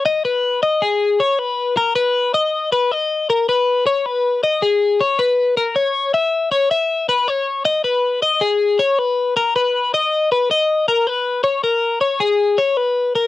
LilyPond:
\new Staff \with { instrumentName = "Clean electric guitar" } { \time 5/4 \key b \major \tempo 4 = 158 dis''8 b'4 dis''8 gis'4 cis''8 b'4 ais'8 | b'4 dis''4 b'8 dis''4 ais'8 b'4 | cis''8 b'4 dis''8 gis'4 cis''8 b'4 ais'8 | cis''4 e''4 cis''8 e''4 b'8 cis''4 |
dis''8 b'4 dis''8 gis'4 cis''8 b'4 ais'8 | b'4 dis''4 b'8 dis''4 ais'8 b'4 | cis''8 ais'4 cis''8 gis'4 cis''8 b'4 ais'8 | }